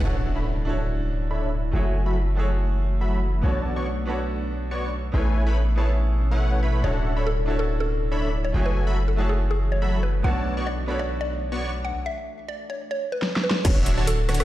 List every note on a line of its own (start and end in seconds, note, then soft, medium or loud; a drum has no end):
0.01 1.71 D1 medium
0.01 1.72 F#3 medium
0.01 0.63 D4 medium
0.01 0.33 D4 medium
0.01 0.64 E4 medium
0.01 1.72 E4 medium
0.01 0.65 F#4 medium
0.01 0.33 A4 medium
0.01 0.65 A4 medium
0.01 0.33 C#5 medium
0.01 0.66 C#5 medium
0.01 0.33 E5 medium
0.01 0.33 F#5 medium
0.01 crash medium
0.01 impact medium
0.36 0.46 D4 medium
0.36 0.46 A4 medium
0.36 0.46 C#5 medium
0.36 0.46 E5 medium
0.36 0.46 B5 loud
0.65 1.70 D4 medium
0.65 0.79 D4 medium
0.65 1.70 E4 medium
0.65 1.71 F#4 medium
0.65 0.79 A4 medium
0.65 1.71 A4 medium
0.65 0.79 C#5 medium
0.65 1.72 C#5 medium
0.65 0.79 E5 medium
0.65 0.79 A5 medium
1.31 1.49 D4 medium
1.31 1.49 A4 medium
1.31 1.49 C#5 medium
1.31 1.49 E5 medium
1.31 1.49 B5 loud
1.71 3.42 F#1 medium
1.71 3.42 E3 medium
1.71 2.03 F#3 medium
1.71 2.34 A3 medium
1.71 5.10 A3 medium
1.71 2.34 E4 medium
1.71 3.42 F#4 medium
1.71 2.03 F#4 medium
1.71 2.35 F#4 medium
1.71 2.35 G#4 medium
1.71 2.03 A4 medium
1.71 2.36 C#5 medium
1.71 2.03 E5 medium
1.71 2.03 G#5 medium
2.06 2.17 F#3 loud
2.06 2.17 F#4 medium
2.06 2.17 A4 medium
2.06 2.17 E5 medium
2.06 2.17 B5 loud
2.35 2.49 F#3 medium
2.35 3.40 A3 medium
2.35 3.41 E4 medium
2.35 2.49 F#4 medium
2.35 3.41 F#4 medium
2.35 3.42 G#4 medium
2.35 2.49 A4 medium
2.35 2.49 E5 medium
2.35 2.49 A5 medium
2.39 3.42 C#5 medium
3.01 3.19 F#3 medium
3.01 3.19 F#4 medium
3.01 3.19 A4 medium
3.01 3.19 E5 medium
3.01 3.19 B5 loud
3.42 5.12 B1 medium
3.42 4.04 B3 medium
3.42 3.73 B3 medium
3.42 4.04 D4 medium
3.42 5.12 D4 medium
3.42 4.05 F#4 medium
3.42 3.73 F#4 medium
3.42 4.05 A4 medium
3.42 3.73 C#5 medium
3.42 4.06 C#5 medium
3.42 3.73 D5 medium
3.42 3.73 A5 medium
3.76 3.87 B3 loud
3.76 3.87 F#4 medium
3.76 3.87 C#5 medium
3.76 3.87 D5 medium
3.76 3.87 C#6 loud
4.05 5.10 B3 medium
4.05 4.19 B3 medium
4.05 5.11 D4 medium
4.05 4.19 F#4 medium
4.05 5.11 F#4 medium
4.05 5.12 A4 medium
4.05 4.19 C#5 medium
4.05 4.19 D5 medium
4.05 4.19 B5 medium
4.09 5.12 C#5 medium
4.71 4.89 B3 medium
4.71 4.89 F#4 medium
4.71 4.89 C#5 medium
4.71 4.89 D5 medium
4.71 4.89 C#6 loud
5.12 6.82 A1 medium
5.12 6.82 B2 medium
5.12 5.44 A3 medium
5.12 5.74 B3 medium
5.12 6.82 C#4 medium
5.12 5.75 E4 medium
5.12 5.44 E4 medium
5.12 5.75 G#4 medium
5.12 5.76 A4 medium
5.12 5.44 B4 medium
5.12 5.44 C#5 medium
5.12 5.76 C#5 medium
5.12 5.44 G#5 medium
5.46 5.57 A3 loud
5.46 5.57 E4 medium
5.46 5.57 B4 medium
5.46 5.57 C#5 medium
5.46 5.57 B5 loud
5.75 5.90 A3 medium
5.75 6.81 B3 medium
5.75 6.81 E4 medium
5.75 5.90 E4 medium
5.75 6.82 G#4 medium
5.75 6.82 A4 medium
5.75 5.90 B4 medium
5.75 5.90 C#5 medium
5.75 5.90 A5 medium
5.80 6.83 C#5 medium
6.31 6.60 A3 medium
6.31 6.60 E4 medium
6.31 6.60 B4 medium
6.31 6.60 C#5 medium
6.31 6.60 F#5 loud
6.63 6.82 A3 medium
6.63 6.82 E4 medium
6.63 6.82 B4 medium
6.63 6.82 C#5 medium
6.63 6.82 B5 loud
6.82 8.52 D1 medium
6.82 8.52 F#3 medium
6.82 7.44 D4 medium
6.82 7.14 D4 medium
6.82 7.45 E4 medium
6.82 8.52 E4 medium
6.82 7.45 F#4 medium
6.82 7.14 A4 medium
6.82 7.46 A4 medium
6.82 7.14 C#5 medium
6.82 7.09 C#5 loud
6.82 7.46 C#5 medium
6.82 7.14 E5 medium
6.82 7.14 F#5 medium
7.16 7.27 D4 medium
7.16 7.27 A4 medium
7.16 7.27 C#5 medium
7.16 7.27 E5 medium
7.16 7.27 B5 loud
7.27 7.45 A4 medium
7.46 8.51 D4 medium
7.46 7.60 D4 medium
7.46 8.51 E4 medium
7.46 8.52 F#4 medium
7.46 7.60 A4 medium
7.46 8.52 A4 medium
7.46 7.60 C#5 medium
7.46 7.60 E5 medium
7.46 7.60 A5 medium
7.50 8.53 C#5 medium
7.59 7.71 A4 medium
7.80 8.05 A4 medium
8.12 8.30 D4 loud
8.12 8.30 A4 medium
8.12 8.30 C#5 medium
8.12 8.30 E5 medium
8.12 8.30 B5 loud
8.44 8.56 C#5 medium
8.52 10.22 F#1 medium
8.52 10.23 E3 medium
8.52 8.84 F#3 medium
8.52 9.15 A3 medium
8.52 11.91 A3 medium
8.52 9.15 E4 medium
8.52 8.84 F#4 medium
8.52 10.23 F#4 medium
8.52 9.16 F#4 medium
8.52 9.16 G#4 medium
8.52 8.84 A4 medium
8.52 9.17 C#5 medium
8.52 8.84 E5 medium
8.52 8.84 G#5 medium
8.66 8.90 B4 loud
8.87 8.97 F#3 loud
8.87 8.97 F#4 medium
8.87 8.97 A4 medium
8.87 8.97 E5 medium
8.87 8.97 B5 loud
9.08 9.20 A4 medium
9.16 9.30 F#3 medium
9.16 10.21 A3 medium
9.16 10.22 E4 medium
9.16 9.30 F#4 medium
9.16 10.22 F#4 medium
9.16 10.23 G#4 medium
9.16 9.30 A4 medium
9.16 10.23 C#5 medium
9.16 9.30 E5 medium
9.16 9.30 A5 medium
9.29 9.41 G#4 medium
9.51 9.62 G#4 medium
9.72 9.90 C#5 medium
9.82 10.00 F#3 medium
9.82 10.00 F#4 medium
9.82 10.00 A4 medium
9.82 10.00 E5 medium
9.82 10.00 B5 loud
10.03 10.16 B4 medium
10.22 11.93 B1 medium
10.22 10.85 B3 medium
10.22 10.54 B3 medium
10.22 10.85 D4 medium
10.22 11.93 D4 medium
10.22 10.86 F#4 medium
10.22 10.54 F#4 medium
10.22 10.86 A4 medium
10.22 10.54 C#5 medium
10.22 10.87 C#5 medium
10.22 10.54 D5 medium
10.22 10.49 F#5 loud
10.22 10.54 A5 medium
10.57 10.68 B3 loud
10.57 10.68 F#4 medium
10.57 10.68 C#5 medium
10.57 10.68 D5 medium
10.57 10.68 C#6 loud
10.67 10.85 D5 loud
10.86 11.91 B3 medium
10.86 11.00 B3 medium
10.86 11.92 D4 medium
10.86 11.92 F#4 medium
10.86 11.00 F#4 medium
10.86 11.93 A4 medium
10.86 11.00 C#5 medium
10.86 11.93 C#5 loud
10.86 11.00 D5 medium
10.86 11.00 B5 medium
10.99 11.11 D5 medium
11.21 11.45 D5 medium
11.52 11.70 B3 medium
11.52 11.70 F#4 medium
11.52 11.70 C#5 medium
11.52 11.70 D5 medium
11.52 11.70 C#6 loud
11.85 11.96 F#5 medium
12.06 12.30 E5 medium
12.48 12.60 D5 medium
12.70 12.81 C#5 medium
12.91 13.03 C#5 medium
13.12 13.31 B4 medium
13.22 snare medium
13.36 snare medium
13.44 13.56 B4 medium
13.51 snare medium
13.65 14.44 D1 loud
13.65 14.44 C#3 medium
13.65 13.95 D3 medium
13.65 14.44 F#3 medium
13.65 13.95 D4 medium
13.65 14.44 E4 medium
13.65 13.95 F#4 medium
13.65 13.90 C#5 loud
13.65 13.95 C#5 medium
13.65 13.95 E5 medium
13.65 kick loud
13.65 closed hi-hat medium
13.65 crash loud
13.86 closed hi-hat medium
13.98 14.08 D3 loud
13.98 14.08 D4 medium
13.98 14.08 F#4 medium
13.98 14.08 C#5 medium
13.98 14.08 A5 loud
14.07 14.26 A4 loud
14.07 closed hi-hat medium
14.29 14.41 D3 medium
14.29 14.41 D4 medium
14.29 14.41 F#4 medium
14.29 14.41 C#5 medium
14.29 14.41 F#5 medium
14.29 cross-stick medium
14.29 closed hi-hat medium
14.34 closed hi-hat medium
14.40 14.44 A4 medium
14.40 cross-stick medium
14.40 closed hi-hat medium